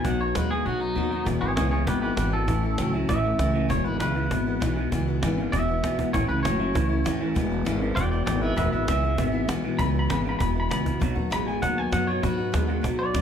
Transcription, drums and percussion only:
0.05 cajon bass loud
0.35 cajon slap loud
0.51 cajon slap soft
0.66 cajon slap medium
0.81 cajon slap soft
0.96 cajon slap soft
1.11 cajon slap soft
1.26 cajon bass loud
1.57 cajon slap loud
1.72 cajon slap soft
1.87 cajon bass loud
2.03 cajon slap soft
2.17 cajon slap loud
2.48 cajon bass loud
2.63 cajon slap soft
2.78 cajon slap loud
2.93 cajon slap soft
3.09 cajon bass loud
3.24 cajon slap soft
3.39 cajon slap loud
3.54 cajon slap soft
3.70 cajon bass loud
4.00 cajon slap loud
4.16 cajon slap soft
4.31 cajon bass loud
4.47 cajon slap soft
4.62 cajon slap loud
4.77 cajon slap soft
4.92 cajon bass loud
5.23 cajon slap loud
5.38 cajon slap soft
5.53 cajon bass loud
5.69 cajon slap soft
5.84 cajon slap loud
5.99 cajon bass medium
6.14 cajon bass loud
6.45 cajon slap loud
6.75 cajon bass loud
6.91 cajon slap soft
7.06 cajon slap loud
7.36 cajon bass loud
7.66 cajon slap loud
7.82 cajon slap soft
7.97 cajon bass loud
8.12 cajon slap soft
8.27 cajon slap loud
8.42 cajon slap soft
8.58 cajon bass loud
8.73 cajon slap soft
8.88 cajon slap loud
9.18 cajon bass loud
9.34 cajon slap soft
9.49 cajon slap loud
9.64 cajon slap soft
9.79 cajon bass loud
9.95 cajon slap soft
10.10 cajon slap loud
10.25 cajon slap soft
10.40 cajon bass loud
10.56 cajon slap soft
10.71 cajon slap loud
10.86 cajon bass medium
11.01 cajon bass loud
11.17 cajon slap soft
11.32 cajon slap loud
11.48 cajon slap soft
11.63 cajon bass loud
11.93 cajon slap loud
12.08 cajon slap soft
12.23 cajon bass loud
12.39 cajon slap soft
12.54 cajon slap loud
12.69 cajon slap soft
12.84 cajon bass loud
13.15 cajon slap loud

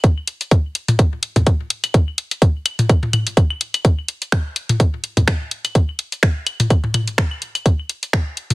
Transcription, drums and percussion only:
0.04 kick loud
0.04 closed hi-hat soft
0.27 closed hi-hat medium
0.41 closed hi-hat soft
0.51 kick loud
0.51 closed hi-hat soft
0.75 closed hi-hat medium
0.88 closed hi-hat soft
0.88 mid tom medium
0.99 kick loud
0.99 closed hi-hat soft
1.23 closed hi-hat medium
1.36 kick medium
1.36 closed hi-hat soft
1.36 mid tom medium
1.47 kick loud
1.47 closed hi-hat soft
1.70 closed hi-hat loud
1.84 closed hi-hat medium
1.84 claves medium
1.94 kick loud
1.94 closed hi-hat soft
2.18 closed hi-hat medium
2.31 closed hi-hat soft
2.42 kick loud
2.42 closed hi-hat soft
2.66 closed hi-hat medium
2.66 claves medium
2.79 closed hi-hat soft
2.79 mid tom medium
2.89 kick loud
2.89 closed hi-hat soft
3.03 mid tom medium
3.13 closed hi-hat medium
3.13 mid tom medium
3.13 claves medium
3.27 closed hi-hat soft
3.37 kick loud
3.37 closed hi-hat soft
3.50 claves medium
3.61 closed hi-hat medium
3.74 closed hi-hat medium
3.74 claves medium
3.85 kick loud
3.85 closed hi-hat soft
4.08 closed hi-hat medium
4.22 closed hi-hat soft
4.32 finger snap medium
4.32 kick loud
4.32 closed hi-hat soft
4.56 closed hi-hat medium
4.69 closed hi-hat medium
4.69 mid tom medium
4.80 kick loud
4.80 closed hi-hat soft
5.04 closed hi-hat medium
5.17 kick medium
5.17 closed hi-hat soft
5.17 mid tom medium
5.28 finger snap medium
5.28 kick loud
5.28 closed hi-hat soft
5.51 closed hi-hat medium
5.65 closed hi-hat soft
5.65 claves medium
5.75 kick loud
5.75 closed hi-hat soft
5.99 closed hi-hat medium
6.12 closed hi-hat soft
6.23 finger snap medium
6.23 kick loud
6.23 closed hi-hat soft
6.47 closed hi-hat medium
6.47 claves medium
6.60 closed hi-hat medium
6.60 mid tom medium
6.70 kick loud
6.70 closed hi-hat soft
6.84 mid tom medium
6.94 closed hi-hat medium
6.94 mid tom medium
6.94 claves soft
7.08 closed hi-hat soft
7.18 finger snap medium
7.18 kick loud
7.18 closed hi-hat soft
7.31 claves medium
7.42 closed hi-hat medium
7.55 closed hi-hat soft
7.55 claves medium
7.66 kick loud
7.66 closed hi-hat soft
7.89 closed hi-hat medium
8.03 closed hi-hat medium
8.13 finger snap medium
8.13 kick loud
8.13 closed hi-hat soft
8.37 closed hi-hat medium
8.50 closed hi-hat medium
8.50 mid tom medium

